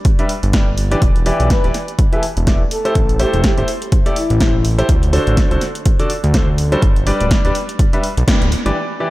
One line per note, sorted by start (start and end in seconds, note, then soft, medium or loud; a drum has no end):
0.05 kick loud
0.05 closed hi-hat medium
0.19 0.29 G3 medium
0.19 0.29 D4 medium
0.19 0.29 G4 medium
0.19 0.29 B4 medium
0.19 0.29 E5 loud
0.19 closed hi-hat soft
0.29 open hi-hat loud
0.43 0.96 G1 medium
0.43 closed hi-hat soft
0.53 0.67 G3 medium
0.53 0.67 D4 medium
0.53 0.67 G4 medium
0.53 0.67 B4 medium
0.53 0.67 D5 medium
0.53 kick loud
0.53 snare loud
0.53 closed hi-hat medium
0.78 open hi-hat medium
0.91 1.01 E3 medium
0.91 1.01 D4 medium
0.91 1.01 G4 medium
0.91 1.01 B4 medium
0.91 1.01 D5 loud
0.91 closed hi-hat soft
1.02 1.32 E1 loud
1.02 kick loud
1.02 closed hi-hat medium
1.16 closed hi-hat soft
1.26 1.61 E3 loud
1.26 1.61 E4 medium
1.26 1.61 G4 medium
1.26 1.61 B4 medium
1.26 1.61 D5 loud
1.26 open hi-hat medium
1.40 1.54 B1 medium
1.40 closed hi-hat soft
1.50 1.64 B4 medium
1.50 kick loud
1.50 snare loud
1.50 closed hi-hat medium
1.64 1.71 D1 medium
1.64 1.74 E3 medium
1.64 1.74 E4 medium
1.64 1.74 G4 medium
1.64 1.74 B4 medium
1.64 1.74 D5 loud
1.64 closed hi-hat soft
1.74 snare soft
1.74 open hi-hat medium
1.88 closed hi-hat soft
1.99 kick loud
1.99 closed hi-hat medium
2.13 2.22 E3 medium
2.13 2.22 E4 medium
2.13 2.22 G4 medium
2.13 2.23 A4 medium
2.13 2.22 B4 medium
2.13 2.22 E5 medium
2.13 closed hi-hat soft
2.23 open hi-hat loud
2.37 2.65 E1 medium
2.37 closed hi-hat soft
2.47 2.60 A3 medium
2.47 2.60 E4 medium
2.47 2.60 G4 medium
2.47 2.60 B4 medium
2.47 2.60 D5 medium
2.47 kick loud
2.47 snare loud
2.47 closed hi-hat medium
2.71 3.17 A4 medium
2.71 open hi-hat medium
2.85 2.95 A3 medium
2.85 2.95 E4 medium
2.85 2.95 G4 medium
2.85 2.95 A4 medium
2.85 2.95 C5 loud
2.85 closed hi-hat soft
2.95 3.25 A1 loud
2.95 kick loud
2.95 closed hi-hat medium
3.09 closed hi-hat soft
3.19 3.54 A3 loud
3.19 3.54 E4 medium
3.19 3.34 G4 medium
3.19 3.54 G4 medium
3.19 3.54 A4 medium
3.19 3.54 C5 loud
3.19 open hi-hat loud
3.34 3.47 E1 medium
3.34 closed hi-hat soft
3.43 3.58 G4 medium
3.43 kick loud
3.43 snare loud
3.43 closed hi-hat medium
3.58 3.64 G1 medium
3.58 3.67 A3 medium
3.58 3.67 E4 medium
3.58 3.67 G4 medium
3.58 3.67 A4 medium
3.58 3.67 C5 loud
3.58 closed hi-hat soft
3.68 open hi-hat medium
3.82 closed hi-hat soft
3.92 kick loud
3.92 closed hi-hat medium
4.06 4.16 A3 medium
4.06 4.16 E4 medium
4.06 4.16 G4 medium
4.06 4.16 A4 medium
4.06 4.16 D5 loud
4.06 closed hi-hat soft
4.16 4.65 E4 loud
4.16 open hi-hat loud
4.30 4.83 A1 medium
4.30 closed hi-hat soft
4.40 4.54 A3 medium
4.40 4.54 E4 medium
4.40 4.54 G4 medium
4.40 4.54 A4 medium
4.40 4.54 C5 medium
4.40 kick loud
4.40 snare loud
4.40 closed hi-hat medium
4.65 open hi-hat medium
4.78 4.88 E4 loud
4.78 4.88 G4 medium
4.78 4.88 A4 medium
4.78 4.88 C5 loud
4.78 closed hi-hat soft
4.89 5.19 D2 loud
4.89 kick loud
4.89 closed hi-hat medium
5.03 closed hi-hat soft
5.13 5.48 D3 loud
5.13 5.48 D4 medium
5.13 5.48 F#4 medium
5.13 5.48 A4 medium
5.13 5.48 C5 loud
5.13 open hi-hat medium
5.27 5.41 A1 medium
5.27 closed hi-hat soft
5.37 kick loud
5.37 snare loud
5.37 closed hi-hat medium
5.51 5.58 C2 medium
5.51 5.61 D3 medium
5.51 5.61 D4 medium
5.51 5.61 F#4 medium
5.51 5.61 A4 medium
5.51 5.61 C5 medium
5.51 closed hi-hat soft
5.61 snare soft
5.61 open hi-hat medium
5.75 closed hi-hat soft
5.86 kick loud
5.86 closed hi-hat medium
5.99 6.09 D3 medium
5.99 6.09 D4 medium
5.99 6.09 F#4 medium
5.99 6.09 A4 medium
5.99 6.09 D5 medium
5.99 closed hi-hat soft
6.10 open hi-hat loud
6.24 6.76 D2 medium
6.24 closed hi-hat soft
6.34 6.47 D3 medium
6.34 6.47 D4 medium
6.34 6.47 F#4 medium
6.34 6.47 A4 medium
6.34 6.47 C5 medium
6.34 kick loud
6.34 snare loud
6.34 closed hi-hat medium
6.58 open hi-hat medium
6.72 6.81 G3 loud
6.72 6.81 D4 medium
6.72 6.81 F#4 medium
6.72 6.81 A4 medium
6.72 6.81 C5 loud
6.72 closed hi-hat soft
6.82 7.12 G1 loud
6.82 kick loud
6.82 closed hi-hat medium
6.96 closed hi-hat soft
7.07 7.41 G3 medium
7.07 7.41 D4 medium
7.07 7.41 G4 medium
7.07 7.41 B4 medium
7.07 7.41 D5 loud
7.07 open hi-hat loud
7.20 7.34 D1 medium
7.20 closed hi-hat soft
7.31 kick loud
7.31 snare loud
7.31 closed hi-hat loud
7.45 7.51 D1 medium
7.45 7.54 G3 medium
7.45 7.54 D4 medium
7.45 7.54 G4 medium
7.45 7.54 B4 medium
7.45 7.54 D5 medium
7.45 closed hi-hat soft
7.55 open hi-hat medium
7.69 closed hi-hat soft
7.79 kick loud
7.79 closed hi-hat medium
7.93 8.03 G3 medium
7.93 8.03 D4 medium
7.93 8.03 G4 medium
7.93 8.03 B4 medium
7.93 8.03 E5 medium
7.93 closed hi-hat soft
8.04 open hi-hat medium
8.17 8.24 B1 medium
8.17 closed hi-hat soft
8.28 8.41 G3 medium
8.28 8.41 D4 medium
8.28 8.41 G4 medium
8.28 8.41 B4 medium
8.28 8.41 D5 medium
8.28 kick loud
8.28 snare loud
8.28 closed hi-hat loud
8.42 8.55 D1 medium
8.42 closed hi-hat soft
8.52 open hi-hat medium
8.66 8.72 G1 medium
8.66 8.75 E3 medium
8.66 8.75 D4 medium
8.66 8.75 G4 medium
8.66 8.75 B4 medium
8.66 8.75 D5 loud
8.66 closed hi-hat soft
9.00 9.10 E3 medium
9.00 9.10 E4 medium
9.00 9.10 G4 medium
9.00 9.10 B4 medium
9.00 9.10 D5 medium